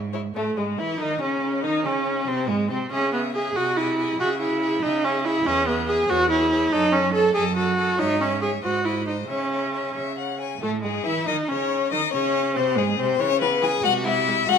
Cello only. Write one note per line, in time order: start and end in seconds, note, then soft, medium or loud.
0.00 0.24 G#2 medium
0.36 0.56 A2 medium
0.57 0.80 G#2 soft
0.79 0.99 E3 soft
1.00 1.20 D#3 medium
1.21 1.65 C#3 medium
1.63 1.86 D#3 medium
1.84 2.27 C#3 medium
2.27 2.50 C3 medium
2.49 2.72 G#2 medium
2.70 2.91 C3 soft
2.91 3.48 C#3 soft
3.55 4.12 C3 medium
4.19 4.75 C#3 medium
4.82 5.38 C#3 medium
5.46 6.02 E2 medium
6.09 6.65 E2 medium
6.72 7.28 F#2 medium
7.35 7.91 F#2 medium
7.99 8.56 G#2 medium
8.63 9.21 G#2 soft
9.29 9.88 C#3 soft
9.95 10.55 C#3 soft
10.62 10.85 A2 medium
10.84 11.05 G#2 medium
11.05 11.27 E3 medium
11.27 11.35 D#3 medium
11.49 11.91 C#3 medium
11.92 12.00 D#3 medium
12.14 12.58 C#3 medium
12.57 12.79 C3 medium
12.78 12.98 G#2 medium
12.99 13.20 C3 medium
13.20 13.77 C#3 medium
13.84 14.40 C3 medium
14.48 14.58 C#3 medium